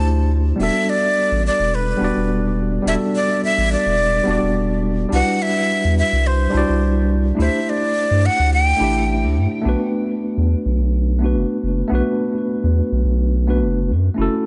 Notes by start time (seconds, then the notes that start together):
Already playing: D2 A3 D4 E4 G4 C5 A5
0.56 E1 G3 B3 D4
0.61 F#4 A4 E5
0.89 D5
1.31 A1
1.47 D5
1.59 E1
1.75 B4
1.97 E1 G3 B3 D4
2.02 F#4 D5
2.16 E1
2.82 E1 G3 B3 D4
2.88 F#4 A4 E5
3.15 D5
3.44 E5
3.58 A1
3.72 D5
3.86 E1
4.24 E1 G3 B3 D4
4.29 F#4 D5
4.43 E1
5.09 C2 G3 D4 E4
5.14 F#4 B4 F#5
5.42 E5
5.84 E2
5.99 E5
6.12 C2
6.27 C5
6.50 C2 G3 D4 E4
6.55 F#4 D5
6.69 C2
7.35 D2 A3 D4 E4
7.40 G4 C5 E5
7.69 D5
8.11 G2
8.26 F#5
8.39 D2
8.54 G5
8.77 A1 A3 D4 E4
8.82 G4 E5
9.24 D2
9.37 G2
9.62 B1 A3 B3 D4
9.67 F#4 B4
10.37 E2
10.65 B1
10.78 B1
11.18 A3 B3 D4
11.24 F#4 B4
11.35 F#1
11.63 F#1
11.88 B1 A3 B3 D4
11.93 F#4 B4
12.63 E2
12.92 B1
13.05 B1
13.47 A3 B3 D4 F#4 B4
13.61 F#1
13.90 F#2
14.14 F#1 A3 C#4 E4
14.20 F#4 A4